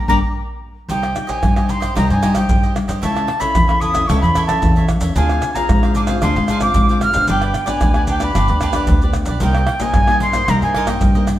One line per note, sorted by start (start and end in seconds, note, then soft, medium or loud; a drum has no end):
0.08 0.19 G1 medium
0.08 0.17 G3 medium
0.08 0.17 A#3 medium
0.08 0.17 D4 medium
0.08 0.18 G4 medium
0.08 0.18 A#4 medium
0.08 0.18 D5 medium
0.08 0.17 A#5 loud
0.08 surdo medium
0.89 1.12 C2 medium
0.89 1.40 C3 medium
0.89 1.05 G3 medium
0.89 1.02 D#4 medium
0.89 1.06 D#4 medium
0.89 1.02 G4 medium
0.89 1.06 G4 medium
0.89 1.02 C5 medium
0.89 1.01 D#5 medium
0.89 1.30 G5 medium
0.89 pandeiro medium
0.89 maracas medium
0.89 surdo medium
1.03 1.14 G4 soft
1.03 1.15 C5 soft
1.03 1.15 D#5 soft
1.03 pandeiro soft
1.03 tamborim medium
1.03 maracas soft
1.15 1.41 G3 medium
1.15 1.41 D#4 medium
1.15 1.41 G4 medium
1.15 muted cavaquinho stroke soft
1.15 pandeiro medium
1.15 tamborim medium
1.15 maracas medium
1.27 1.55 G4 medium
1.27 1.54 C5 medium
1.27 1.54 D#5 medium
1.27 1.71 G#5 medium
1.27 pandeiro medium
1.27 maracas medium
1.27 surdo soft
1.42 1.88 G2 medium
1.42 1.56 G3 medium
1.42 pandeiro medium
1.42 tamborim medium
1.42 maracas medium
1.42 surdo medium
1.56 1.92 G3 medium
1.56 1.92 D#4 medium
1.56 1.92 G4 medium
1.56 1.68 G4 soft
1.56 1.68 C5 soft
1.56 1.69 D#5 soft
1.56 pandeiro soft
1.56 tamborim medium
1.56 maracas soft
1.69 1.81 D#4 soft
1.69 1.81 G4 soft
1.69 1.80 C5 soft
1.69 1.79 D#5 medium
1.69 1.96 C6 medium
1.69 pandeiro medium
1.69 maracas medium
1.80 1.95 G4 medium
1.80 1.94 C5 medium
1.80 1.94 D#5 medium
1.80 pandeiro medium
1.80 tamborim medium
1.80 maracas medium
1.80 surdo soft
1.95 2.08 C2 loud
1.95 2.47 C3 medium
1.95 2.19 G3 medium
1.95 2.08 D#4 medium
1.95 2.19 D#4 medium
1.95 2.08 G4 medium
1.95 2.19 G4 medium
1.95 2.09 C5 medium
1.95 2.09 D#5 medium
1.95 2.09 A#5 medium
1.95 pandeiro medium
1.95 tamborim medium
1.95 maracas medium
1.95 surdo medium
2.10 2.44 G2 medium
2.10 2.21 G4 soft
2.10 2.22 C5 soft
2.10 2.22 D#5 soft
2.10 2.35 G#5 medium
2.10 pandeiro soft
2.10 maracas soft
2.22 2.31 G3 medium
2.22 2.35 D#4 medium
2.22 2.31 D#4 medium
2.22 2.35 G4 medium
2.22 2.31 G4 medium
2.22 2.35 C5 medium
2.22 2.35 D#5 medium
2.22 pandeiro medium
2.22 tamborim medium
2.22 maracas medium
2.22 surdo soft
2.35 2.49 G3 medium
2.35 2.72 D#4 medium
2.35 2.72 G4 medium
2.35 2.62 G4 medium
2.35 2.62 C5 medium
2.35 2.62 D#5 medium
2.35 2.73 G5 medium
2.35 pandeiro medium
2.35 tamborim medium
2.35 maracas medium
2.35 surdo soft
2.49 2.84 G2 medium
2.49 2.74 G3 medium
2.49 pandeiro medium
2.49 maracas medium
2.49 surdo loud
2.63 2.75 G4 soft
2.63 2.75 C5 soft
2.63 2.75 D#5 soft
2.63 pandeiro soft
2.63 maracas soft
2.75 2.93 G3 medium
2.75 2.93 D#4 medium
2.75 2.93 G4 medium
2.75 muted cavaquinho stroke soft
2.75 pandeiro medium
2.75 tamborim medium
2.75 maracas medium
2.88 3.00 G2 medium
2.88 3.02 G4 soft
2.88 3.01 C5 soft
2.88 3.01 D#5 soft
2.88 pandeiro medium
2.88 maracas medium
3.02 3.25 C#2 medium
3.02 3.53 C#3 medium
3.02 3.28 C#4 medium
3.02 3.14 E4 medium
3.02 3.28 E4 medium
3.02 3.15 A4 medium
3.02 3.28 A4 medium
3.02 3.15 C#5 medium
3.02 3.14 E5 medium
3.02 3.42 A5 medium
3.02 pandeiro medium
3.02 maracas medium
3.02 surdo medium
3.15 3.27 A4 soft
3.15 3.27 C#5 soft
3.15 3.27 E5 soft
3.15 pandeiro soft
3.15 tamborim medium
3.15 maracas soft
3.27 muted cavaquinho stroke soft
3.27 pandeiro medium
3.27 tamborim medium
3.40 3.64 C#4 medium
3.40 3.65 E4 medium
3.40 3.67 A4 medium
3.40 3.64 A4 medium
3.40 3.67 C#5 medium
3.40 3.67 E5 medium
3.40 3.82 B5 medium
3.40 pandeiro medium
3.40 maracas medium
3.40 surdo soft
3.55 4.01 E2 medium
3.55 4.07 C#3 medium
3.55 pandeiro medium
3.55 tamborim medium
3.55 maracas medium
3.55 surdo medium
3.68 3.92 C#4 medium
3.68 3.93 E4 medium
3.68 3.80 A4 soft
3.68 3.93 A4 medium
3.68 3.81 C#5 soft
3.68 3.81 E5 soft
3.68 pandeiro soft
3.68 tamborim medium
3.68 maracas soft
3.81 3.94 E4 soft
3.81 3.94 A4 soft
3.81 3.94 C#5 soft
3.81 3.93 E5 medium
3.81 4.09 D#6 loud
3.81 pandeiro medium
3.81 maracas medium
3.94 4.05 C#4 medium
3.94 4.05 E4 medium
3.94 4.08 A4 medium
3.94 4.05 A4 medium
3.94 4.08 C#5 medium
3.94 4.07 E5 medium
3.94 pandeiro medium
3.94 tamborim medium
3.94 maracas medium
3.94 surdo soft
4.07 4.20 C#2 loud
4.07 4.60 C#3 medium
4.07 4.35 C#4 medium
4.07 4.21 E4 medium
4.07 4.35 E4 medium
4.07 4.22 A4 medium
4.07 4.35 A4 medium
4.07 4.22 C#5 medium
4.07 4.22 E5 medium
4.07 4.20 C#6 medium
4.07 pandeiro medium
4.07 tamborim medium
4.07 maracas medium
4.07 surdo medium
4.21 4.56 E2 medium
4.21 4.36 E5 soft
4.21 4.46 B5 medium
4.21 pandeiro soft
4.21 maracas soft
4.25 4.35 A4 soft
4.25 4.36 C#5 soft
4.35 4.48 E4 medium
4.35 4.48 A4 medium
4.35 4.48 C#5 medium
4.35 4.47 E5 medium
4.35 pandeiro medium
4.35 tamborim medium
4.35 maracas medium
4.35 surdo soft
4.47 4.71 C#4 medium
4.47 4.71 E4 medium
4.47 4.72 A4 medium
4.47 4.75 A4 medium
4.47 4.75 C#5 medium
4.47 4.74 E5 medium
4.47 4.85 A5 medium
4.47 pandeiro medium
4.47 tamborim medium
4.47 maracas medium
4.47 surdo soft
4.62 4.96 E2 loud
4.62 5.14 C#3 medium
4.62 pandeiro medium
4.62 maracas medium
4.62 surdo medium
4.76 5.12 C#4 medium
4.76 5.12 E4 medium
4.76 5.12 A4 medium
4.76 4.88 A4 soft
4.76 4.89 C#5 soft
4.76 4.89 E5 soft
4.76 pandeiro soft
4.76 maracas soft
4.89 muted cavaquinho stroke soft
4.89 pandeiro medium
4.89 tamborim medium
4.89 maracas medium
4.89 surdo soft
5.01 5.13 E2 medium
5.01 5.15 A4 soft
5.01 5.15 C#5 soft
5.01 5.15 E5 soft
5.01 pandeiro medium
5.01 maracas medium
5.15 5.38 D2 medium
5.15 5.67 D3 medium
5.15 5.52 C4 medium
5.15 5.28 D4 medium
5.15 5.52 F4 medium
5.15 5.29 G#4 medium
5.15 5.52 G#4 medium
5.15 5.29 C5 medium
5.15 5.29 F5 medium
5.15 5.56 G#5 medium
5.15 pandeiro medium
5.15 maracas medium
5.15 surdo medium
5.29 5.42 G#4 soft
5.29 5.43 C5 soft
5.29 5.42 F5 soft
5.29 pandeiro soft
5.29 tamborim medium
5.29 maracas soft
5.42 muted cavaquinho stroke soft
5.42 pandeiro medium
5.42 tamborim medium
5.42 maracas medium
5.55 5.78 C4 medium
5.55 5.78 F4 medium
5.55 5.78 G#4 medium
5.55 5.82 G#4 medium
5.55 5.82 C5 medium
5.55 5.81 F5 medium
5.55 5.95 A#5 medium
5.55 pandeiro medium
5.55 maracas medium
5.55 surdo soft
5.69 6.14 G#2 medium
5.69 6.20 D3 medium
5.69 pandeiro medium
5.69 tamborim medium
5.69 maracas medium
5.69 surdo loud
5.83 6.05 C4 medium
5.83 6.05 F4 medium
5.83 6.05 G#4 medium
5.83 5.95 G#4 soft
5.83 5.96 C5 soft
5.83 5.95 F5 soft
5.83 pandeiro soft
5.83 tamborim medium
5.83 maracas soft
5.95 6.08 D4 soft
5.95 6.08 G#4 medium
5.95 6.08 C5 medium
5.95 6.07 F5 medium
5.95 6.02 D6 medium
5.95 pandeiro medium
5.95 maracas medium
6.07 6.18 C4 medium
6.07 6.18 F4 medium
6.07 6.18 G#4 medium
6.07 6.22 G#4 medium
6.07 6.21 C5 medium
6.07 6.21 F5 medium
6.07 pandeiro medium
6.07 tamborim medium
6.07 maracas medium
6.07 surdo soft
6.22 6.34 D2 loud
6.22 6.73 D3 medium
6.22 6.48 C4 medium
6.22 6.35 D4 medium
6.22 6.48 F4 medium
6.22 6.48 G#4 medium
6.22 6.35 G#4 medium
6.22 6.35 C5 medium
6.22 6.35 F5 medium
6.22 6.59 C6 medium
6.22 pandeiro medium
6.22 tamborim medium
6.22 maracas medium
6.22 surdo medium
6.36 6.70 G#2 medium
6.36 6.49 G#4 soft
6.36 6.49 C5 soft
6.36 6.48 F5 soft
6.36 pandeiro soft
6.36 maracas soft
6.48 6.61 D4 medium
6.48 6.62 G#4 medium
6.48 6.62 C5 medium
6.48 6.61 F5 medium
6.48 pandeiro medium
6.48 tamborim medium
6.48 maracas medium
6.48 surdo soft
6.61 6.84 C4 medium
6.61 6.84 F4 medium
6.61 6.85 G#4 medium
6.61 6.88 G#4 medium
6.61 6.88 C5 medium
6.61 6.88 F5 medium
6.61 6.99 D6 medium
6.61 pandeiro medium
6.61 tamborim medium
6.61 maracas medium
6.61 surdo soft
6.74 7.10 G#2 medium
6.74 7.26 D3 medium
6.74 pandeiro medium
6.74 maracas medium
6.74 surdo medium
6.89 7.11 C4 medium
6.89 7.12 F4 medium
6.89 7.12 G#4 medium
6.89 7.01 G#4 soft
6.89 7.02 C5 soft
6.89 7.01 F5 soft
6.89 pandeiro soft
6.89 maracas soft
7.01 7.27 F6 loud
7.01 muted cavaquinho stroke soft
7.01 pandeiro medium
7.01 tamborim medium
7.01 maracas medium
7.01 surdo soft
7.14 7.27 G#2 medium
7.14 7.64 B3 medium
7.14 7.64 D4 medium
7.14 7.64 G4 medium
7.14 7.28 G#4 soft
7.14 7.28 C5 soft
7.14 7.27 F5 soft
7.14 pandeiro medium
7.14 maracas medium
7.27 7.51 G1 medium
7.27 7.79 G3 medium
7.27 7.41 D4 medium
7.27 7.41 G4 medium
7.27 7.41 B4 medium
7.27 7.40 D5 medium
7.27 7.70 G5 medium
7.27 pandeiro medium
7.27 maracas medium
7.27 surdo medium
7.42 7.53 G4 soft
7.42 7.54 B4 soft
7.42 7.54 D5 soft
7.42 pandeiro soft
7.42 tamborim medium
7.42 maracas soft
7.54 muted cavaquinho stroke soft
7.54 pandeiro medium
7.54 tamborim medium
7.54 maracas medium
7.66 7.90 B3 medium
7.66 7.90 D4 medium
7.66 7.94 G4 medium
7.66 7.91 G4 medium
7.66 7.94 B4 medium
7.66 7.93 D5 medium
7.66 8.09 G#5 medium
7.66 pandeiro medium
7.66 maracas medium
7.66 surdo soft
7.81 8.27 D2 medium
7.81 8.32 D3 medium
7.81 pandeiro medium
7.81 tamborim medium
7.81 maracas medium
7.81 surdo loud
7.94 8.17 B3 medium
7.94 8.17 D4 medium
7.94 8.18 G4 medium
7.94 8.07 G4 soft
7.94 8.08 B4 soft
7.94 8.07 D5 soft
7.94 pandeiro soft
7.94 tamborim medium
7.94 maracas soft
8.07 8.21 D4 soft
8.07 8.21 G4 medium
8.07 8.21 B4 medium
8.07 8.19 D5 medium
8.07 8.25 G5 medium
8.07 pandeiro medium
8.07 maracas medium
8.19 8.30 B3 medium
8.19 8.30 D4 medium
8.19 8.30 G4 medium
8.19 8.34 G4 soft
8.19 8.34 B4 medium
8.19 8.34 D5 medium
8.19 pandeiro medium
8.19 tamborim medium
8.19 maracas medium
8.19 surdo soft
8.24 8.89 B5 medium
8.34 8.46 G1 loud
8.34 8.85 G3 medium
8.34 8.70 B3 medium
8.34 8.71 D4 medium
8.34 8.47 D4 medium
8.34 8.47 G4 medium
8.34 8.71 G4 medium
8.34 8.48 B4 medium
8.34 8.47 D5 medium
8.34 pandeiro medium
8.34 tamborim medium
8.34 maracas medium
8.34 surdo medium
8.48 8.83 D2 medium
8.48 8.61 G4 soft
8.48 8.61 B4 soft
8.48 8.61 D5 soft
8.48 pandeiro soft
8.48 maracas soft
8.61 8.74 D4 medium
8.61 8.74 G4 medium
8.61 8.74 B4 medium
8.61 8.74 D5 medium
8.61 pandeiro medium
8.61 tamborim medium
8.61 maracas medium
8.61 surdo soft
8.73 8.96 B3 medium
8.73 8.96 D4 medium
8.73 8.97 G4 medium
8.73 9.01 G4 medium
8.73 9.01 B4 medium
8.73 9.00 D5 medium
8.73 pandeiro medium
8.73 tamborim medium
8.73 maracas medium
8.73 surdo soft
8.87 9.22 D2 medium
8.87 9.39 D3 medium
8.87 pandeiro medium
8.87 maracas medium
8.87 surdo medium
9.01 9.38 B3 soft
9.01 9.38 D4 medium
9.01 9.38 G4 medium
9.01 9.15 G4 soft
9.01 9.15 B4 soft
9.01 9.14 D5 medium
9.01 pandeiro soft
9.01 maracas soft
9.13 muted cavaquinho stroke soft
9.13 pandeiro medium
9.13 tamborim medium
9.13 maracas medium
9.13 surdo soft
9.26 9.39 B1 medium
9.26 9.41 B4 soft
9.26 9.41 D5 soft
9.26 pandeiro medium
9.26 maracas medium
9.30 9.42 G4 soft
9.40 9.64 C2 medium
9.40 9.92 C3 medium
9.40 9.66 A#3 medium
9.40 9.67 D#4 medium
9.40 9.54 D#4 medium
9.40 9.67 G4 medium
9.40 9.55 A#4 medium
9.40 9.55 C5 medium
9.40 9.55 D#5 medium
9.40 9.83 G5 medium
9.40 pandeiro medium
9.40 maracas medium
9.40 surdo medium
9.55 9.68 A#4 soft
9.55 9.68 C5 soft
9.55 9.68 D#5 medium
9.55 pandeiro soft
9.55 tamborim medium
9.55 maracas soft
9.67 muted cavaquinho stroke soft
9.67 pandeiro medium
9.67 tamborim medium
9.80 10.03 A#3 medium
9.80 10.04 D#4 medium
9.80 10.04 G4 medium
9.80 10.08 A#4 medium
9.80 10.08 C5 medium
9.80 10.07 D#5 medium
9.80 10.21 G#5 medium
9.80 pandeiro medium
9.80 maracas medium
9.80 surdo soft
9.94 10.45 G2 medium
9.94 10.40 G2 medium
9.94 pandeiro medium
9.94 tamborim medium
9.94 maracas medium
9.94 surdo medium
10.07 10.30 A#3 medium
10.07 10.30 D#4 medium
10.07 10.31 G4 medium
10.07 10.22 C5 soft
10.07 10.21 D#5 soft
10.07 pandeiro soft
10.07 tamborim medium
10.07 maracas soft
10.12 10.21 A#4 soft
10.20 10.34 D#4 soft
10.20 10.34 A#4 soft
10.20 10.34 C5 soft
10.20 10.33 D#5 medium
10.20 10.51 C6 loud
10.20 pandeiro medium
10.32 10.43 A#3 medium
10.32 10.43 D#4 medium
10.32 10.43 G4 medium
10.32 10.48 A#4 medium
10.32 10.47 C5 medium
10.32 10.47 D#5 medium
10.32 pandeiro medium
10.32 tamborim medium
10.32 maracas medium
10.32 surdo soft
10.47 10.59 C2 loud
10.47 10.99 C3 medium
10.47 10.73 A#3 medium
10.47 10.73 D#4 medium
10.47 10.61 D#4 medium
10.47 10.73 G4 medium
10.47 10.61 A#4 medium
10.47 10.61 C5 medium
10.47 10.61 D#5 medium
10.47 10.62 A#5 medium
10.47 pandeiro medium
10.47 tamborim medium
10.47 maracas medium
10.47 surdo medium
10.62 10.96 G2 medium
10.62 10.75 A#4 soft
10.62 10.75 C5 soft
10.62 10.75 D#5 soft
10.62 10.88 G#5 medium
10.62 pandeiro soft
10.62 maracas soft
10.74 10.88 D#4 medium
10.74 10.88 A#4 medium
10.74 10.87 C5 medium
10.74 10.87 D#5 medium
10.74 pandeiro medium
10.74 tamborim medium
10.74 surdo soft
10.86 11.09 A#3 medium
10.86 11.09 D#4 medium
10.86 11.09 G4 medium
10.86 11.14 A#4 medium
10.86 11.14 C5 medium
10.86 11.14 D#5 medium
10.86 11.27 G5 medium
10.86 pandeiro medium
10.86 tamborim medium
10.86 maracas medium
10.86 surdo soft
11.01 11.39 G2 medium
11.01 11.36 G2 medium
11.01 pandeiro medium
11.01 maracas medium
11.01 surdo loud
11.15 11.37 A#3 medium
11.15 11.37 D#4 medium
11.15 11.37 G4 medium
11.15 11.27 A#4 soft
11.15 11.27 C5 soft
11.15 11.27 D#5 medium
11.15 pandeiro soft
11.15 maracas soft
11.27 muted cavaquinho stroke soft
11.27 pandeiro medium
11.27 tamborim medium
11.27 maracas medium